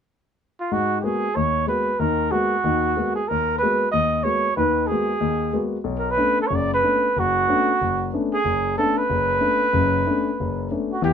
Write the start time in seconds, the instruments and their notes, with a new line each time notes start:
0.60 trumpet F4
0.72 grand piano G#2, trumpet F#4
1.00 grand piano G#3 A#3 B3 F#4, trumpet G4 G#4
1.35 grand piano D#2, trumpet C#5
1.67 grand piano G#3 A#3 B3 F#4, trumpet B4
1.99 grand piano D#2 D#3, trumpet A#4
2.31 grand piano G#3 A#3 B3 F#4, trumpet F#4
2.64 grand piano D#2 D#3
2.97 grand piano G#3 A#3 B3 F#4
3.15 trumpet G#4
3.28 grand piano D#2, trumpet A#4
3.58 trumpet B4
3.63 grand piano G#3 A#3 B3 F#4
3.92 grand piano D#2, trumpet D#5
4.23 grand piano G#3 A#3 B3 F#4, trumpet C#5
4.56 grand piano D#2 D#3, trumpet B4
4.87 trumpet G#4
4.91 grand piano G#3 A#3 B3 F#4
5.21 grand piano D#2
5.53 grand piano G#3 A#3 B3 F#4
5.84 grand piano B1
5.98 trumpet A#4
6.11 trumpet B4
6.16 grand piano A3 B3 C#4 D4
6.41 trumpet A4
6.47 grand piano F#1 F#2, trumpet C#5
6.55 trumpet D5
6.74 trumpet B4
6.82 grand piano A3 B3 C#4 D4
7.17 grand piano F#1, trumpet F#4
7.49 grand piano A3 B3 C#4 D4
7.81 grand piano F#1
8.14 grand piano A3 B3 C#4 D4
8.34 trumpet G#4
8.45 grand piano F#1
8.78 grand piano A3 B3 C#4 D4, trumpet A4
8.97 trumpet B4
9.10 grand piano F#1
9.40 grand piano A3 B3 C#4 D4
9.73 grand piano F#1 F#2
10.06 grand piano A3 B3 C#4 D4
10.40 grand piano F#1
10.71 grand piano A3 B3 C#4 D4
10.91 trumpet F#4
11.02 grand piano E2 E3, trumpet G4